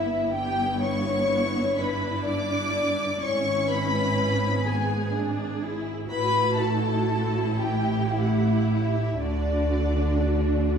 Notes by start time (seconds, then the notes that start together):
Already playing: G1 G2 B3 E4 E5
0.31 B3 E4 G4 G5
0.81 C#5 C#6
1.78 D4 B4 B5
2.25 D5 D6
3.21 G#1 G#2 C#4 E4 C#5 C#6
3.69 B4 B5
4.64 B3 G#4 G#5
5.13 D4
5.61 E4
6.10 A1 A2 E4 F#4 B4 B5
6.57 A4 A5
7.58 G4 G5
8.09 E4 E5
8.21 F#5
8.30 E5
8.37 F#5
8.47 E5
8.55 F#5
8.63 E5
8.75 F#5
8.82 E5
9.19 D2 D3 D4 F#4 D5